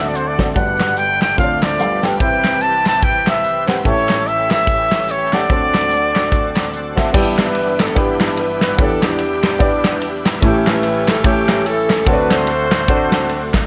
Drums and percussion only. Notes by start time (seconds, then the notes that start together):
0.15 closed hi-hat
0.39 kick, snare, closed hi-hat
0.56 kick, closed hi-hat
0.80 snare, clap, closed hi-hat
0.97 closed hi-hat
1.21 snare, clap, closed hi-hat
1.38 kick, closed hi-hat
1.62 snare, clap, closed hi-hat
1.79 closed hi-hat
2.03 snare, clap, closed hi-hat
2.20 kick, closed hi-hat
2.44 snare, clap, closed hi-hat
2.61 closed hi-hat
2.86 snare, clap, closed hi-hat
3.02 kick, closed hi-hat
3.27 snare, clap, closed hi-hat
3.44 closed hi-hat
3.68 snare, clap, closed hi-hat
3.85 kick, closed hi-hat
4.09 snare, clap, closed hi-hat
4.26 closed hi-hat
4.50 snare, clap, closed hi-hat
4.67 kick, closed hi-hat
4.92 snare, clap, closed hi-hat
5.09 closed hi-hat
5.33 snare, clap, closed hi-hat
5.50 kick, closed hi-hat
5.74 snare, clap, closed hi-hat
5.91 closed hi-hat
6.15 snare, clap, closed hi-hat
6.32 kick, closed hi-hat
6.56 snare, clap, closed hi-hat
6.73 closed hi-hat
6.97 kick, snare, clap, closed hi-hat
7.14 kick, crash
7.38 snare, clap, ride
7.55 ride
7.79 snare, clap, ride
7.96 kick, ride
8.20 snare, clap, ride
8.37 ride
8.61 snare, clap, ride
8.78 kick, ride
9.03 snare, clap, ride
9.19 ride
9.43 snare, clap, ride
9.60 kick, ride
9.84 snare, clap, ride
10.02 ride
10.26 snare, clap, ride
10.42 kick, ride
10.67 snare, clap, ride
10.83 ride
11.08 snare, clap, ride
11.24 kick, ride
11.48 snare, clap, ride
11.66 ride
11.90 snare, clap, ride
12.06 kick, ride
12.31 snare, clap, ride
12.47 ride
12.71 snare, clap, ride
12.88 kick, ride
13.12 snare, clap, ride
13.29 ride
13.54 kick, snare, clap, ride